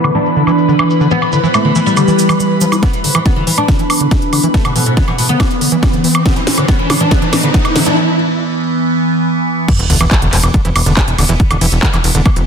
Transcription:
Already playing: ambient pad E3 B3, analog synth pad E4 B4 B5
0.04 acid bass D3, oud E3, cabasa, high woodblock
0.14 acid bass E3, oud D4, cabasa
0.26 cabasa
0.36 acid bass D3, cabasa
0.47 acid bass E3, cabasa, high woodblock
0.58 cabasa
0.68 acid bass D3, cabasa
0.79 acid bass E3, high woodblock
0.90 cabasa
1.01 acid bass D3, cabasa
1.11 acid bass E3, oud B3, cabasa
1.22 oud E3, high woodblock
1.32 acid bass D3, oud E3, cabasa
1.43 oud E3, acid bass E3, cabasa
1.54 oud A3, cabasa, high woodblock
1.65 acid bass D3, oud E3
1.75 oud E3, acid bass E3, cabasa
1.86 oud G3, cabasa
1.97 acid bass D3, cabasa, high woodblock
2.08 acid bass E3, cabasa
2.19 cabasa
2.29 acid bass E3, cabasa, high woodblock
2.40 acid bass E3, cabasa
2.61 acid bass F3, cabasa
2.72 acid bass E4, cabasa, high woodblock
2.83 ambient pad E3 B3, acid bass E3, oud B3, kick, snare, closed hi-hat, riser, high woodblock
2.93 oud E3, closed hi-hat
3.04 acid bass D3, oud E3, open hi-hat
3.15 acid bass E3, oud E3, closed hi-hat, high woodblock
3.26 oud B3, kick, snare, closed hi-hat
3.36 acid bass D3, oud E3
3.47 acid bass E3, oud E3, open hi-hat
3.58 oud D4, high woodblock
3.68 acid bass D3, kick, snare, closed hi-hat
3.79 acid bass E3, closed hi-hat
3.90 open hi-hat, high woodblock
4.01 acid bass D3, closed hi-hat
4.11 acid bass E3, kick, snare, closed hi-hat
4.22 closed hi-hat
4.33 acid bass D3, open hi-hat, high woodblock
4.43 acid bass E3, closed hi-hat
4.54 oud A3, kick, snare, closed hi-hat
4.65 oud B2, acid bass D3, closed hi-hat, high woodblock
4.76 oud B2, acid bass E3, open hi-hat
4.86 oud B2, closed hi-hat
4.97 acid bass D3, kick, snare, closed hi-hat
5.08 oud B2, acid bass E3, high woodblock
5.18 oud B2, open hi-hat
5.29 acid bass D3, oud B3, closed hi-hat
5.40 acid bass E3, kick, snare, closed hi-hat, high woodblock
5.51 closed hi-hat
5.61 acid bass D3, open hi-hat
5.72 acid bass E3, closed hi-hat
5.83 kick, snare, closed hi-hat, high woodblock
5.93 acid bass D3, closed hi-hat
6.04 acid bass E3, open hi-hat
6.15 closed hi-hat, high woodblock
6.26 acid bass D3, oud B3, kick, snare, closed hi-hat
6.36 acid bass E3, oud E3, closed hi-hat
6.47 oud E3, snare, open hi-hat
6.58 acid bass D3, oud E3, closed hi-hat, high woodblock
6.68 acid bass E3, oud B3, kick, snare, closed hi-hat
6.79 oud E3
6.90 acid bass D3, oud E3, snare, open hi-hat, high woodblock
7.01 acid bass E3, oud D4, closed hi-hat
7.11 acid bass D3, oud B3, kick, snare, closed hi-hat
7.22 acid bass E3, oud E3, closed hi-hat
7.33 oud E3, snare, open hi-hat, high woodblock
7.43 acid bass D3, oud E3, closed hi-hat
7.54 acid bass E3, oud B3, kick, snare, closed hi-hat
7.65 oud E3, closed hi-hat, high woodblock
7.76 acid bass D3, oud E3, snare, open hi-hat
7.86 acid bass E3, oud D4, closed hi-hat
9.68 ambient pad E3 B3, acid bass E3, kick, closed hi-hat, crash, sub drop, high woodblock
9.79 analog synth bass E1, closed hi-hat
9.90 analog synth bass E1, acid bass D3, open hi-hat, ride
10.01 analog synth bass E1, acid bass E3, high woodblock
10.11 kick, clap, closed hi-hat
10.22 analog synth bass E1, acid bass D3, closed hi-hat
10.33 analog synth bass E1, acid bass E3, clap, open hi-hat, ride
10.43 analog synth bass E1, closed hi-hat, high woodblock
10.54 acid bass D3, kick, closed hi-hat
10.65 analog synth bass F1, acid bass E3, closed hi-hat
10.76 analog synth bass E1, open hi-hat, ride, high woodblock
10.86 analog synth bass E1, acid bass D3, closed hi-hat
10.97 acid bass E3, kick, clap, closed hi-hat
11.08 analog synth bass E1, closed hi-hat
11.18 analog synth bass E1, acid bass D3, open hi-hat, ride, high woodblock
11.29 analog synth bass E1, acid bass E3, closed hi-hat
11.40 kick, closed hi-hat
11.51 analog synth bass E1, acid bass D3, closed hi-hat, high woodblock
11.61 analog synth bass E1, acid bass E3, open hi-hat, ride
11.72 analog synth bass E1, closed hi-hat
11.83 acid bass D3, kick, clap, closed hi-hat
11.93 analog synth bass E1, acid bass E3, clap, closed hi-hat, high woodblock
12.04 analog synth bass E1, open hi-hat, ride
12.15 analog synth bass E1, acid bass D3, closed hi-hat
12.26 acid bass E3, kick, closed hi-hat, high woodblock
12.36 analog synth bass F1, closed hi-hat

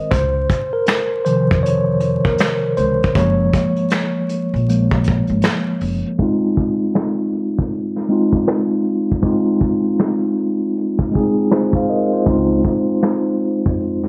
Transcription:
Already playing: tine electric piano D#5
0.11 upright bass C#2, tine electric piano C5, kick, closed hi-hat
0.50 kick, closed hi-hat
0.73 tine electric piano A#4
0.86 finger snap, snare, closed hi-hat
1.25 tine electric piano C3 D#3 F3 C5, closed hi-hat
1.51 upright bass F2, kick, closed hi-hat
1.63 tine electric piano C#5, closed hi-hat
2.00 closed hi-hat
2.25 upright bass D#2, tine electric piano A#4, kick
2.38 finger snap, snare, closed hi-hat
2.77 upright bass C#2, tine electric piano C5, closed hi-hat
3.03 kick, closed hi-hat
3.15 upright bass F#1, tine electric piano F3 G#3 A#3 C#5, kick, closed hi-hat
3.53 kick, closed hi-hat
3.76 closed hi-hat
3.90 finger snap, snare, closed hi-hat
4.29 closed hi-hat
4.54 upright bass A#1, closed hi-hat
4.68 tine electric piano F3 G#3 A#3, closed hi-hat
4.91 kick
5.04 kick, closed hi-hat
5.27 upright bass G#1, closed hi-hat
5.42 finger snap, snare, closed hi-hat
5.81 upright bass F#1, open hi-hat
6.06 closed hi-hat
6.19 tine electric piano G#3 C4 D#4 F4, kick, closed hi-hat
6.57 kick, closed hi-hat
6.94 finger snap, snare, closed hi-hat
7.33 closed hi-hat
7.59 kick, closed hi-hat
7.73 closed hi-hat
7.96 snare
8.08 tine electric piano G#3 C4 D#4, closed hi-hat
8.12 tine electric piano F4
8.31 kick, closed hi-hat
8.46 finger snap, snare, closed hi-hat
8.84 closed hi-hat
9.10 kick, closed hi-hat
9.22 tine electric piano G#3 C4 D#4 F4, kick, closed hi-hat
9.61 kick, closed hi-hat
9.84 closed hi-hat
9.98 finger snap, snare, closed hi-hat
10.37 closed hi-hat
10.77 closed hi-hat
10.99 kick
11.12 tine electric piano G#3 C4 D#4, kick, closed hi-hat
11.16 tine electric piano G#4
11.35 closed hi-hat
11.49 tine electric piano F4 C5, finger snap, snare, closed hi-hat
11.73 tine electric piano C5 F5, kick
11.88 tine electric piano A#4 D#5, closed hi-hat
12.13 tine electric piano F4 C5, closed hi-hat
12.25 upright bass C#2, tine electric piano G#3 C4 D#4, kick, closed hi-hat
12.29 tine electric piano F4
12.65 kick, closed hi-hat
12.87 closed hi-hat
13.01 finger snap, snare, closed hi-hat
13.40 closed hi-hat
13.66 upright bass F2, kick
13.80 closed hi-hat
14.03 snare

